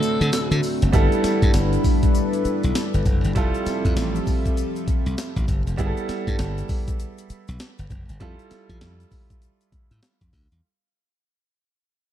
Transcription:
Already playing: analog synth pad D3 A3 C4 F#4 E5, grand piano F#3 C4 D4 E4 A4, alto saxophone A4
0.03 closed hi-hat, tambourine, shaker
0.21 slap bass D3, closed hi-hat, shaker
0.33 snare, closed hi-hat, tambourine, shaker
0.51 slap bass D3, closed hi-hat, shaker
0.63 open hi-hat, tambourine, shaker
0.82 slap bass F#1, closed hi-hat, shaker
0.92 slap bass G1, grand piano G3 B3 E4 A4, analog synth pad G3 D4 E4 A4 B4, kick, closed hi-hat, tambourine, shaker
1.12 closed hi-hat, shaker
1.24 muted slap bass stroke, snare, closed hi-hat, tambourine, shaker
1.42 slap bass G2, kick, closed hi-hat, shaker
1.54 slap bass G1, snare, closed hi-hat, tambourine, shaker
1.73 closed hi-hat, shaker
1.84 kick, open hi-hat, tambourine, shaker
2.03 kick, closed hi-hat, shaker
2.15 closed hi-hat, tambourine, shaker
2.33 closed hi-hat, shaker
2.45 muted slap bass stroke, closed hi-hat, shaker
2.63 slap bass B1, closed hi-hat, shaker
2.75 snare, closed hi-hat, tambourine, shaker
2.94 slap bass G1, closed hi-hat, shaker
3.05 slap bass F1, kick, closed hi-hat, tambourine, shaker
3.24 slap bass G1, closed hi-hat, shaker
3.35 slap bass F1, analog synth pad F3 C4 E5, grand piano G3 E4 F4 A4, kick, closed hi-hat, tambourine, shaker
3.55 closed hi-hat, shaker
3.66 muted slap bass stroke, snare, closed hi-hat, tambourine, shaker
3.85 slap bass F2, kick, closed hi-hat, shaker
3.96 slap bass A1, snare, closed hi-hat, tambourine, shaker
4.15 closed hi-hat, shaker
4.26 kick, open hi-hat, tambourine, shaker
4.46 kick, closed hi-hat, shaker
4.57 closed hi-hat, tambourine, shaker
4.76 closed hi-hat, shaker
4.88 muted slap bass stroke, kick, closed hi-hat, shaker
5.06 slap bass C2, closed hi-hat, shaker
5.18 snare, closed hi-hat, tambourine, shaker
5.36 slap bass A1, kick, closed hi-hat, shaker
5.48 slap bass G1, kick, closed hi-hat, tambourine, shaker
5.67 slap bass F1, closed hi-hat, shaker
5.77 slap bass G1, grand piano G3 B3 E4 G#4, kick, closed hi-hat, shaker
5.86 grand piano A4
5.97 closed hi-hat, shaker
6.09 muted slap bass stroke, snare, closed hi-hat, shaker
6.27 slap bass G2, kick, closed hi-hat, shaker
6.39 slap bass G1, snare, closed hi-hat, shaker
6.58 closed hi-hat, shaker
6.69 kick, open hi-hat, shaker
6.88 kick, closed hi-hat, shaker
7.00 closed hi-hat, shaker
7.18 closed hi-hat, shaker
7.30 muted slap bass stroke, closed hi-hat, shaker
7.48 slap bass B1, closed hi-hat, shaker
7.60 snare, closed hi-hat, shaker
7.78 slap bass G1, closed hi-hat, shaker
7.90 slap bass F1, kick, closed hi-hat, shaker
8.09 slap bass G1, closed hi-hat, shaker
8.20 slap bass F2, grand piano G3 E4 F4 A4, kick, closed hi-hat, shaker
8.39 closed hi-hat, shaker
8.51 muted slap bass stroke, snare, closed hi-hat, shaker
8.69 slap bass F3, kick, closed hi-hat, shaker
8.81 slap bass F2, snare, closed hi-hat, shaker
9.00 closed hi-hat, shaker
9.11 kick, open hi-hat, shaker
9.30 kick, closed hi-hat, shaker
9.42 closed hi-hat, shaker
9.61 closed hi-hat, shaker
9.72 muted slap bass stroke, kick, closed hi-hat, shaker
9.91 slap bass A2, closed hi-hat, shaker
10.03 snare, closed hi-hat, shaker
10.21 slap bass F2, kick, closed hi-hat, shaker
10.33 slap bass D2, kick, open hi-hat, shaker
10.52 slap bass E2, closed hi-hat, shaker

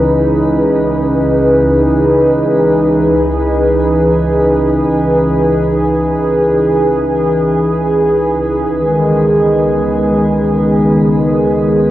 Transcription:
Already playing: double bass section C#2, analog synth pad E3 C#4 D#4 G#4 B4
8.71 double bass section C#2, analog synth pad D#3
8.82 analog synth pad G#3
9.43 analog synth pad B3

